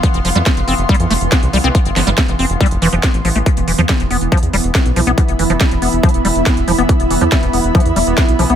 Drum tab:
HH |x-x-o-x-x-x-o-x-xxx-o-x-x-x-o-x-|x-x-o-x-x-x-o-x-xxx-o-x-x-x-o-x-|x-x-o-x-x-x-o-x-xxx-o-x-x-x-o-x-|x-x-o-x-x-x-o-x-xxx-o-x-x-x-o-x-|
SD |--------o---------------o-------|----o---o---------------o-------|--------o---------------o-------|--------o---------------o-------|
BD |o-------o-------o-------o-------|o-------o-------o-------o-------|o-------o-------o-------o-------|o-------o-------o-------o-------|

HH |x-x-o-x-x-x-o-x-xxx-o-x-x-x-o-x-|
SD |--------o---------------o-------|
BD |o-------o-------o-------o-------|